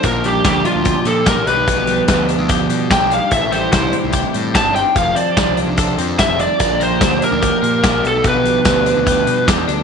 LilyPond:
<<
  \new Staff \with { instrumentName = "Lead electric guitar" } { \time 4/4 \key g \mixolydian \tempo 4 = 146 bes'8 g'8 g'8 f'4 a'8 bes'8 b'8~ | b'4. r4. g''8 f''8 | e''8 c''8 c''8 r4. a''8 g''8 | f''8 d''8 d''8 r4. e''8 d''8~ |
d''8 c''4 bes'2 a'8 | b'2. r4 | }
  \new Staff \with { instrumentName = "Clean electric guitar" } { \time 4/4 \key g \mixolydian <bes d' g'>2.~ <bes d' g'>8 <f b g'>8~ | <f b g'>1 | <e' g'>1 | <d' a'>1 |
<f bes d' g'>2.~ <f bes d' g'>8 r8 | r1 | }
  \new Staff \with { instrumentName = "Clean electric guitar" } { \time 4/4 \key g \mixolydian bes,8 g8 f8 d'8 g'8 g8 g'8 b,8 | b,8 g8 f8 d'8 g'8 g8 g'8 d'8 | a,8 g8 e8 c'8 g'8 g8 g'8 c'8 | f8 c'8 f8 d'8 a'8 c'8 a'8 d'8 |
bes,8 bes8 f8 d'8 g'8 bes8 g'8 b,8 | b,8 g8 f8 d'8 g'8 g8 g'8 d'8 | }
  \new Staff \with { instrumentName = "Picked electric bass" } { \clef bass \time 4/4 \key g \mixolydian bes,,4 d,8 r16 d,8 r16 bes,8. a,,16 b,,8~ | b,,4 d,8. d,8. b,8. b,,8 r16 | a,,4 c,8 r16 c,8 r16 a,8. g,,8 r16 | f,,8 r8 c,8. c,8. f,8. f,,8 r16 |
bes,,4 d,8 r16 d,8 r16 bes,8. bes,,16 b,,8~ | b,,4 d,8. d,8. b,8 e,8 d,8 | }
  \new DrumStaff \with { instrumentName = "Drums" } \drummode { \time 4/4 <hh bd>8 hh8 <hh bd sn>8 hh8 <hh bd>8 hh8 <hh bd sn>8 hh8 | <hh bd>8 hh8 <hh bd sn>8 hh8 <hh bd>8 hh8 <hh bd sn>8 hh8 | <hh bd>8 hh8 <hh bd sn>8 hh8 <hh bd>8 hh8 <hh bd sn>8 hh8 | <hh bd>8 hh8 <hh bd sn>8 hh8 <hh bd>8 hh8 <hh bd sn>8 hh8 |
<hh bd>8 hh8 <hh bd sn>8 hh8 <hh bd>8 hh8 <hh bd sn>8 hh8 | <hh bd>8 hh8 <hh bd sn>8 hh8 <hh bd>8 hh8 <hh bd sn>8 hh8 | }
>>